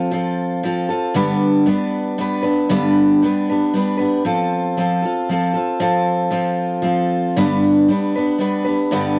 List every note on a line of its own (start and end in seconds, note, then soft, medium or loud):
0.00 0.10 C4 medium
0.00 0.11 F4 medium
0.00 0.11 A4 medium
0.11 0.62 F3 medium
0.11 0.64 C4 medium
0.11 0.64 F4 medium
0.11 0.64 A4 medium
0.63 0.89 F3 medium
0.63 0.90 C4 medium
0.63 0.89 F4 medium
0.63 0.88 A4 medium
0.89 1.15 C4 soft
0.89 1.15 F4 soft
0.89 1.15 A4 soft
1.14 1.66 G2 medium
1.14 1.66 D3 medium
1.14 1.65 G3 medium
1.14 1.65 B3 medium
1.14 1.67 D4 medium
1.14 1.67 B4 medium
1.66 2.17 G3 medium
1.66 2.17 B3 medium
1.66 2.19 D4 medium
1.66 2.19 B4 medium
2.18 2.44 G3 medium
2.18 2.43 B3 medium
2.18 2.42 D4 medium
2.18 2.41 B4 medium
2.43 2.69 G3 soft
2.43 2.69 B3 soft
2.43 2.70 D4 soft
2.43 2.69 B4 medium
2.69 3.21 G2 medium
2.69 3.22 D3 medium
2.69 3.21 G3 medium
2.69 3.22 B3 medium
2.69 3.22 D4 medium
2.69 3.22 B4 medium
3.22 3.48 G3 medium
3.22 3.48 B3 medium
3.22 3.49 D4 medium
3.22 3.48 B4 medium
3.49 3.72 G3 soft
3.49 3.74 B3 soft
3.49 3.75 D4 medium
3.49 3.74 B4 medium
3.74 3.99 G3 medium
3.74 3.98 B3 medium
3.74 3.97 D4 medium
3.74 3.96 B4 medium
3.97 4.24 B3 soft
3.97 4.25 D4 medium
3.97 4.24 B4 medium
4.01 4.24 G3 soft
4.25 4.76 F3 medium
4.25 4.77 C4 medium
4.25 4.77 F4 medium
4.25 4.77 A4 medium
4.77 5.03 F3 medium
4.77 5.03 C4 medium
4.77 5.04 F4 medium
4.77 5.01 A4 medium
5.02 5.29 C4 soft
5.02 5.30 F4 medium
5.02 5.29 A4 soft
5.29 5.55 F3 medium
5.29 5.56 C4 medium
5.29 5.54 F4 medium
5.29 5.52 A4 medium
5.54 5.79 C4 soft
5.54 5.80 F4 soft
5.54 5.80 A4 medium
5.80 6.29 F3 medium
5.80 6.30 C4 medium
5.80 6.30 F4 medium
5.80 6.32 A4 medium
6.31 6.81 F3 medium
6.31 6.82 C4 medium
6.31 6.84 F4 medium
6.31 6.85 A4 medium
6.82 7.35 F3 medium
6.82 7.36 C4 medium
6.82 7.36 F4 medium
6.82 7.37 A4 medium
7.36 7.88 G2 medium
7.36 7.88 D3 medium
7.36 7.88 G3 medium
7.36 7.90 B3 medium
7.36 7.90 D4 medium
7.36 7.92 B4 medium
7.88 8.14 G3 medium
7.88 8.15 B3 medium
7.88 8.15 D4 medium
7.88 8.14 B4 medium
8.15 8.37 G3 soft
8.15 8.39 B3 soft
8.15 8.40 D4 soft
8.15 8.40 B4 medium
8.38 8.65 G3 medium
8.38 8.66 B3 medium
8.38 8.64 D4 medium
8.38 8.63 B4 medium
8.65 8.91 G3 soft
8.65 8.91 B3 soft
8.65 8.91 D4 soft
8.65 8.91 B4 medium
8.91 9.19 G2 medium
8.91 9.19 D3 medium
8.91 9.19 G3 medium
8.91 9.19 B3 loud
8.91 9.19 D4 medium
8.91 9.19 B4 loud